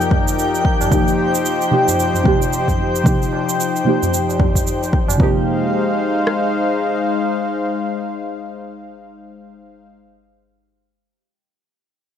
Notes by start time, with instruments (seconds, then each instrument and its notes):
Already playing: synth stab C3 F3 A#3 D#4 G4, analog synth pad F3 D#4 G4 A#4 G5, synth texture G5
0.01 cabasa
0.11 kick, tabla tin, tabla ge
0.28 cabasa
0.39 cabasa
0.54 tabla tin, cabasa
0.65 kick
0.81 tabla na, tabla tin, tabla ge, cabasa
0.90 synth stab C3 F3 A#3 D#4, analog synth pad C5, kick, cabasa
0.94 synth stab G4
1.08 cabasa
1.18 tabla tin
1.35 cabasa
1.46 cabasa
1.61 cabasa
1.71 synth stab C3 F3 A#3 D#4 G4, tabla na
1.88 tabla ge, cabasa
1.99 tabla na, cabasa
2.14 tabla tin, tabla ge, cabasa
2.24 synth stab C3 F3 A#3 D#4, kick, tabla na, tabla tin
2.28 synth stab G4
2.41 tabla tin, cabasa
2.53 cabasa
2.68 kick, tabla ge, cabasa
2.96 cabasa
3.04 synth stab C3 F3 A#3 D#4, kick, cabasa
3.08 synth stab G4
3.22 cabasa
3.33 tabla na, tabla tin
3.49 cabasa
3.60 cabasa
3.76 cabasa
3.84 synth stab C3 F3 A#3 D#4, tabla na
3.89 synth stab G4
4.03 tabla ge, cabasa
4.14 cabasa
4.29 tabla tin, cabasa
4.39 kick, tabla tin, tabla ge
4.55 kick, cabasa
4.67 cabasa
4.81 tabla tin, cabasa
4.93 kick
5.08 tabla na, tabla tin, tabla ge, cabasa
5.17 synth stab C3 F3 A#3, analog synth pad G#3 D#4 C5 F5, kick
5.22 synth stab D#4 G4
6.27 cross-stick